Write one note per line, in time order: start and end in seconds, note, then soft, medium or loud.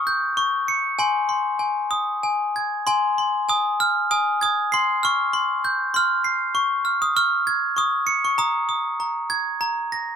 0.00 0.36 C#6 medium
0.00 0.40 D#6 medium
0.07 0.99 G6 medium
0.37 0.99 C#6 medium
0.68 0.99 C#7 medium
0.99 1.58 G#5 medium
0.99 1.28 C6 medium
1.29 2.56 C6 medium
1.59 2.22 G#5 medium
1.91 2.87 D#6 medium
2.23 2.86 G#5 medium
2.56 2.87 G#6 medium
2.87 3.47 G#5 medium
2.87 3.17 C6 medium
3.18 4.43 C6 medium
3.49 4.10 G#5 medium
3.49 3.82 D#6 medium
3.80 4.73 F6 medium
4.11 4.73 G#5 medium
4.11 4.41 D#6 medium
4.41 4.74 D#6 medium
4.41 4.73 G#6 medium
4.72 5.05 C6 medium
4.72 5.95 C7 medium
5.03 5.36 C#6 medium
5.03 5.95 F6 medium
5.33 5.93 C6 medium
5.64 6.56 G6 medium
5.94 6.55 C6 medium
5.94 6.58 F6 medium
6.24 6.55 C7 medium
6.55 7.15 C#6 medium
6.85 7.15 F6 medium
7.02 7.17 D#6 medium
7.16 7.75 C#6 medium
7.16 7.79 F6 medium
7.47 8.39 G#6 medium
7.76 8.23 C#6 medium
7.76 8.25 D#6 medium
8.07 8.38 C#7 medium
8.25 8.40 C#6 medium
8.38 8.99 A#5 medium
8.38 8.68 D#6 medium
8.69 9.61 D#6 medium
9.00 9.60 A#5 medium
9.30 9.61 G#6 medium
9.61 10.16 A#5 medium
9.92 10.16 A#6 medium